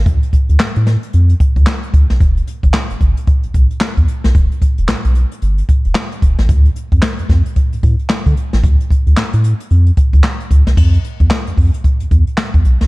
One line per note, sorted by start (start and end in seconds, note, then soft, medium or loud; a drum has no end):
0.06 0.19 D2 medium
0.06 kick loud
0.06 closed hi-hat medium
0.23 closed hi-hat soft
0.33 kick medium
0.33 closed hi-hat medium
0.49 0.57 D2 medium
0.49 closed hi-hat soft
0.60 0.67 A2 soft
0.60 snare loud
0.60 clap medium
0.76 0.97 A2 medium
0.76 closed hi-hat medium
0.86 snare medium
0.86 closed hi-hat medium
1.03 closed hi-hat medium
1.13 1.34 F2 medium
1.13 closed hi-hat medium
1.29 closed hi-hat soft
1.40 kick medium
1.40 closed hi-hat medium
1.56 1.64 D2 medium
1.56 kick medium
1.56 closed hi-hat soft
1.67 snare loud
1.67 clap medium
1.83 closed hi-hat medium
1.94 2.06 D2 medium
1.94 kick loud
1.94 closed hi-hat medium
2.10 2.19 B1 medium
2.10 snare medium
2.10 closed hi-hat soft
2.20 2.41 E1 loud
2.20 kick loud
2.20 closed hi-hat medium
2.37 closed hi-hat soft
2.47 closed hi-hat medium
2.63 2.71 G1 medium
2.63 kick medium
2.63 closed hi-hat soft
2.74 snare loud
2.74 clap loud
2.90 2.95 G1 soft
2.90 closed hi-hat medium
3.01 3.13 G1 medium
3.01 kick medium
3.01 closed hi-hat medium
3.17 closed hi-hat medium
3.27 kick loud
3.27 closed hi-hat medium
3.43 3.49 B1 soft
3.43 closed hi-hat soft
3.54 3.67 B1 medium
3.54 kick medium
3.54 closed hi-hat medium
3.71 closed hi-hat soft
3.81 snare loud
3.81 clap medium
3.97 4.05 E2 medium
3.97 kick medium
3.97 closed hi-hat medium
4.08 closed hi-hat medium
4.24 4.33 B1 medium
4.24 snare medium
4.24 closed hi-hat soft
4.35 4.47 E1 loud
4.35 kick loud
4.35 closed hi-hat medium
4.52 closed hi-hat medium
4.62 kick medium
4.62 closed hi-hat medium
4.78 4.86 E1 medium
4.78 closed hi-hat soft
4.88 4.95 B1 medium
4.88 snare loud
4.88 clap medium
5.05 5.25 B1 medium
5.05 closed hi-hat medium
5.15 closed hi-hat medium
5.32 closed hi-hat medium
5.42 5.62 G1 medium
5.42 closed hi-hat medium
5.58 closed hi-hat soft
5.69 kick medium
5.69 closed hi-hat medium
5.85 5.93 E1 medium
5.85 closed hi-hat soft
5.95 snare loud
5.95 clap loud
6.12 closed hi-hat soft
6.22 6.35 E1 medium
6.22 kick loud
6.22 closed hi-hat medium
6.39 6.47 A1 loud
6.39 snare medium
6.39 closed hi-hat soft
6.49 6.69 D2 loud
6.49 kick loud
6.49 closed hi-hat medium
6.65 closed hi-hat soft
6.76 closed hi-hat medium
6.92 7.00 F2 medium
6.92 kick medium
6.92 closed hi-hat soft
7.02 snare loud
7.02 clap medium
7.19 7.24 F2 soft
7.19 closed hi-hat medium
7.29 7.42 F2 medium
7.29 kick medium
7.29 snare medium
7.29 closed hi-hat medium
7.46 closed hi-hat medium
7.56 kick medium
7.56 closed hi-hat medium
7.73 7.77 A2 medium
7.73 closed hi-hat soft
7.83 7.96 A2 loud
7.83 kick loud
7.83 closed hi-hat medium
7.99 closed hi-hat soft
8.10 snare loud
8.10 clap medium
8.26 8.34 D3 medium
8.26 kick medium
8.26 closed hi-hat medium
8.37 closed hi-hat medium
8.53 8.61 A1 medium
8.53 snare medium
8.53 closed hi-hat soft
8.64 8.76 D2 medium
8.64 kick loud
8.64 closed hi-hat medium
8.80 closed hi-hat medium
8.90 kick medium
8.90 closed hi-hat medium
9.07 9.15 D2 medium
9.07 closed hi-hat soft
9.17 9.24 A2 soft
9.17 snare loud
9.17 clap medium
9.33 9.54 A2 medium
9.33 closed hi-hat medium
9.44 closed hi-hat medium
9.60 closed hi-hat medium
9.70 9.91 F2 loud
9.70 closed hi-hat medium
9.87 closed hi-hat soft
9.97 kick medium
9.97 closed hi-hat medium
10.13 10.21 D2 medium
10.13 kick medium
10.13 closed hi-hat soft
10.24 snare loud
10.24 clap medium
10.40 closed hi-hat soft
10.51 10.63 D2 loud
10.51 kick medium
10.51 closed hi-hat medium
10.67 10.75 C2 medium
10.67 snare medium
10.67 closed hi-hat soft
10.77 10.98 F2 medium
10.77 kick loud
10.77 crash medium
10.94 closed hi-hat medium
11.04 closed hi-hat medium
11.20 11.28 E2 medium
11.20 kick medium
11.20 closed hi-hat soft
11.31 snare loud
11.31 clap loud
11.47 11.52 F2 soft
11.47 closed hi-hat medium
11.57 11.70 F2 medium
11.57 kick medium
11.57 open hi-hat medium
11.74 closed hi-hat medium
11.84 kick medium
11.84 closed hi-hat medium
12.00 12.05 E2 soft
12.00 closed hi-hat soft
12.11 12.24 E2 medium
12.11 kick medium
12.11 closed hi-hat medium
12.27 closed hi-hat soft
12.37 snare loud
12.37 clap medium
12.54 12.62 E2 medium
12.54 kick medium
12.54 closed hi-hat soft
12.65 12.77 B1 loud
12.65 closed hi-hat medium
12.81 12.87 C2 medium
12.81 snare medium
12.81 closed hi-hat soft